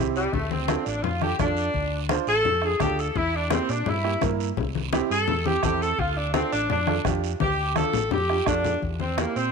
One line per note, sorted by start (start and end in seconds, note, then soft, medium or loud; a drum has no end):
0.00 0.26 C2 medium
0.00 0.23 C4 medium
0.00 0.23 E4 medium
0.00 0.23 G4 medium
0.15 0.33 G3 loud
0.15 short guiro medium
0.32 0.75 D2 loud
0.32 0.50 A3 medium
0.32 bombo low medium
0.32 high conga soft
0.32 low conga medium
0.32 long guiro medium
0.51 0.85 C4 medium
0.51 high conga medium
0.68 0.88 D4 medium
0.68 0.88 F4 medium
0.68 0.88 A4 medium
0.68 bombo rim medium
0.68 high conga loud
0.68 short guiro medium
0.86 1.01 A1 loud
0.86 1.03 D4 medium
0.86 short guiro medium
1.03 1.32 F2 medium
1.03 1.21 F4 medium
1.03 high conga soft
1.03 low conga medium
1.03 long guiro medium
1.21 1.28 D4 medium
1.21 1.28 F4 medium
1.21 1.39 G4 medium
1.21 1.29 A4 medium
1.21 bombo rim medium
1.21 high conga medium
1.39 1.67 F2 medium
1.39 2.08 D4 medium
1.39 1.64 D4 medium
1.39 1.65 F4 medium
1.39 1.65 A4 medium
1.39 bombo low medium
1.39 bombo rim medium
1.39 high conga medium
1.39 low conga medium
1.39 short guiro medium
1.57 short guiro medium
1.74 2.17 D2 loud
1.74 bombo low medium
1.74 high conga soft
1.74 long guiro medium
2.09 2.28 D4 medium
2.09 2.29 F4 medium
2.09 2.29 C5 medium
2.09 bombo rim medium
2.09 high conga loud
2.09 short guiro medium
2.27 2.42 A1 medium
2.27 2.62 A4 loud
2.27 short guiro medium
2.45 2.74 F2 medium
2.45 high conga soft
2.45 low conga medium
2.45 long guiro medium
2.62 2.69 D4 medium
2.62 2.69 F4 medium
2.62 2.81 G#4 medium
2.62 2.69 A4 medium
2.62 bombo rim medium
2.80 3.09 D2 medium
2.80 3.05 D4 medium
2.80 3.05 F4 medium
2.80 2.98 G4 medium
2.80 3.06 A4 medium
2.80 bombo low medium
2.80 bombo rim medium
2.80 high conga medium
2.80 low conga medium
2.80 short guiro medium
2.99 3.16 A4 medium
2.99 short guiro medium
3.15 3.58 E2 loud
3.15 3.34 E4 loud
3.15 bombo low medium
3.15 high conga soft
3.15 low conga medium
3.15 long guiro medium
3.35 3.51 D4 medium
3.50 3.69 A#3 medium
3.50 3.69 C4 medium
3.50 3.70 E4 medium
3.50 3.70 G4 medium
3.50 bombo rim medium
3.50 high conga loud
3.50 short guiro medium
3.69 3.83 A#2 medium
3.69 3.87 D4 medium
3.69 short guiro medium
3.86 4.15 G2 loud
3.86 4.22 E4 loud
3.86 high conga soft
3.86 low conga medium
3.86 long guiro medium
4.04 4.10 A#3 medium
4.04 4.11 E4 medium
4.04 4.11 G4 medium
4.04 bombo rim medium
4.22 4.50 G2 medium
4.22 4.47 A#3 medium
4.22 4.47 E4 medium
4.22 4.47 A#4 medium
4.22 bombo low medium
4.22 bombo rim medium
4.22 high conga medium
4.22 low conga medium
4.22 short guiro medium
4.40 short guiro medium
4.57 5.00 C2 loud
4.57 bombo low medium
4.57 high conga soft
4.57 low conga medium
4.57 long guiro medium
4.75 high conga medium
4.92 5.11 C4 medium
4.92 5.11 E4 medium
4.92 5.11 G4 loud
4.92 bombo rim medium
4.92 high conga loud
4.92 short guiro medium
5.10 5.25 G2 medium
5.10 5.45 A4 loud
5.10 short guiro medium
5.28 5.56 E2 medium
5.28 high conga soft
5.28 low conga medium
5.28 long guiro medium
5.46 5.52 C4 medium
5.46 5.52 E4 medium
5.46 5.63 G4 medium
5.46 5.53 G4 medium
5.46 high conga medium
5.63 5.92 E2 medium
5.63 5.89 C4 medium
5.63 5.89 E4 medium
5.63 5.81 G4 medium
5.63 5.89 A4 medium
5.63 bombo low medium
5.63 bombo rim medium
5.63 high conga medium
5.63 short guiro medium
5.82 5.99 A4 medium
5.82 short guiro medium
5.99 6.41 D2 loud
5.99 6.16 F4 medium
5.99 bombo low medium
5.99 high conga soft
5.99 long guiro medium
6.17 6.34 D4 medium
6.34 6.52 C4 medium
6.34 6.53 D4 medium
6.34 6.53 F4 medium
6.34 6.53 A4 medium
6.34 bombo rim medium
6.34 high conga loud
6.34 short guiro medium
6.52 6.67 A1 medium
6.52 6.68 D4 medium
6.52 short guiro medium
6.69 6.98 F2 loud
6.69 7.04 D4 medium
6.69 high conga soft
6.69 low conga medium
6.69 long guiro medium
6.87 6.93 D4 medium
6.87 6.94 F4 medium
6.87 6.94 A4 medium
6.87 bombo rim medium
6.87 high conga medium
7.04 7.33 F2 medium
7.04 7.30 D4 medium
7.04 7.30 F4 medium
7.04 7.30 G4 medium
7.04 bombo low loud
7.04 bombo rim medium
7.04 high conga loud
7.04 low conga medium
7.04 short guiro medium
7.24 short guiro medium
7.40 7.83 D2 loud
7.40 7.75 G4 medium
7.40 bombo low medium
7.40 high conga medium
7.40 long guiro medium
7.76 7.94 D4 medium
7.76 7.94 F4 medium
7.76 8.10 A4 medium
7.76 7.95 A4 medium
7.76 bombo rim medium
7.76 high conga loud
7.76 short guiro medium
7.93 8.08 A1 medium
7.93 low conga medium
7.93 short guiro medium
8.11 8.40 F2 medium
8.11 8.46 G4 medium
8.11 low conga medium
8.11 long guiro medium
8.29 8.36 D4 medium
8.29 8.36 F4 medium
8.29 8.36 G4 medium
8.29 bombo rim medium
8.46 8.75 F2 medium
8.46 8.71 D4 medium
8.46 8.81 D4 loud
8.46 8.71 F4 medium
8.46 8.72 A4 medium
8.46 bombo low medium
8.46 bombo rim loud
8.46 low conga medium
8.46 short guiro medium
8.64 low conga medium
8.64 short guiro medium
8.82 9.25 E2 loud
8.82 bombo low medium
8.82 high conga soft
8.82 long guiro medium
9.00 9.17 C4 medium
9.00 high conga medium
9.18 9.37 A#3 medium
9.18 9.36 A#3 medium
9.18 9.37 E4 medium
9.18 9.37 G4 medium
9.18 bombo rim medium
9.18 high conga medium
9.18 short guiro medium
9.36 9.50 A#2 medium
9.36 9.52 C4 loud
9.36 short guiro medium